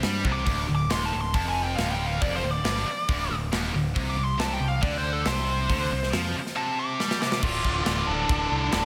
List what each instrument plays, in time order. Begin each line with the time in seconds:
0.03 picked electric bass G2, distorted electric guitar G3, snare, open hi-hat
0.24 picked electric bass C2, distorted electric guitar C3, kick
0.32 lead electric guitar D6
0.46 picked electric bass D1, distorted electric guitar D2, kick, open hi-hat
0.68 picked electric bass D1, distorted electric guitar D2
0.75 lead electric guitar D6
0.90 picked electric bass D#1, distorted electric guitar D#2, lead electric guitar C6, snare, open hi-hat
1.05 lead electric guitar A5
1.13 picked electric bass D1, distorted electric guitar D2
1.20 lead electric guitar C6
1.34 picked electric bass F1, distorted electric guitar F2, lead electric guitar A5, kick, open hi-hat
1.48 lead electric guitar G#5
1.63 lead electric guitar G5
1.76 picked electric bass D1, distorted electric guitar D2, lead electric guitar F5, snare, open hi-hat
1.91 lead electric guitar G5
2.06 lead electric guitar F5
2.21 picked electric bass F1, distorted electric guitar F2, lead electric guitar D5, kick, open hi-hat
2.36 lead electric guitar C5
2.44 picked electric bass D1, distorted electric guitar D2
2.51 lead electric guitar D5
2.64 picked electric bass G1, distorted electric guitar G2, snare, open hi-hat
2.87 muted distorted electric guitar stroke, muted picked electric bass stroke
3.09 picked electric bass D1, distorted electric guitar D2, kick, open hi-hat
3.31 picked electric bass D1, distorted electric guitar D2
3.52 picked electric bass D#1, distorted electric guitar D#2, snare, open hi-hat
3.74 picked electric bass D1, distorted electric guitar D2
3.96 picked electric bass C2, distorted electric guitar C3, kick, open hi-hat
4.10 lead electric guitar D6
4.17 picked electric bass C2, distorted electric guitar C3
4.24 lead electric guitar C6
4.39 picked electric bass C2, distorted electric guitar C3, lead electric guitar A5, snare, open hi-hat
4.53 lead electric guitar G5
4.60 picked electric bass C2, distorted electric guitar C3
4.68 lead electric guitar F5
4.82 picked electric bass D2, distorted electric guitar D3, lead electric guitar D5, kick, open hi-hat
4.98 lead electric guitar C5
5.13 lead electric guitar A4
5.25 picked electric bass C2, distorted electric guitar C3, lead electric guitar C5, snare, open hi-hat
5.69 picked electric bass D2, distorted electric guitar D3, kick, open hi-hat
5.91 picked electric bass C2, distorted electric guitar C3
6.03 snare
6.13 picked electric bass F2, distorted electric guitar F3, snare, open hi-hat
6.35 muted picked electric bass stroke, muted distorted electric guitar stroke
6.47 snare
6.56 distorted electric guitar C3, lead electric guitar A5
6.79 lead electric guitar D6
7.00 distorted electric guitar G3, lead electric guitar D6, snare
7.11 snare
7.21 distorted electric guitar C3, lead electric guitar D6, snare
7.32 snare
7.42 picked electric bass D1, distorted electric guitar D2 A2 D3, lead electric guitar F4 D5, kick, crash
7.65 picked electric bass D1, kick
7.84 picked electric bass D1, lead electric guitar F4 D5, snare, crash
8.07 picked electric bass D1, lead electric guitar D4 A4
8.29 picked electric bass D1, kick, crash
8.52 picked electric bass C2
8.72 picked electric bass D1, lead electric guitar D4 A4, snare, crash